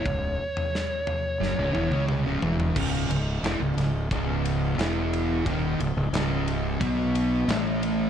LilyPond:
<<
  \new Staff \with { instrumentName = "Lead electric guitar" } { \time 4/4 \key cis \minor \tempo 4 = 89 cis''2. r4 | r1 | r1 | }
  \new Staff \with { instrumentName = "Distorted electric guitar" } { \clef bass \time 4/4 \key cis \minor cis,8 r4. <fis, fis>16 <cis, cis>16 <e, e>16 <cis cis'>8 <cis, cis>16 <e, e>8 | <cis, cis>8 cis,8 <e, e>16 cis,16 cis,8 <cis, cis>4 <e, e>4 | <dis, dis>8 cis,16 cis,16 <cis, cis>4 <b, b>4 <a, a>4 | }
  \new Staff \with { instrumentName = "Fingered electric bass" } { \clef bass \time 4/4 \key cis \minor cis,,8 r4. fis,,16 cis,,16 e,,16 cis,8 cis,,16 e,,8 | cis,,8 cis,,8 e,,16 cis,,16 cis,,8 cis,,4 e,,4 | dis,,8 cis,,16 cis,,16 cis,,4 b,,4 a,,4 | }
  \new DrumStaff \with { instrumentName = "Drums" } \drummode { \time 4/4 <bd tomfh>8. tomfh16 sn8 tomfh8 sn8 tommh16 tommh16 toml8 tomfh16 tomfh16 | <cymc bd>8 cymr8 <cymr sn>8 <cymr sn>8 <bd cymr>8 cymr8 <cymr sn>8 cymr8 | <bd cymr>8 cymr8 <cymr sn>8 cymr8 <bd cymr>8 cymr8 <cymr sn>8 cymr8 | }
>>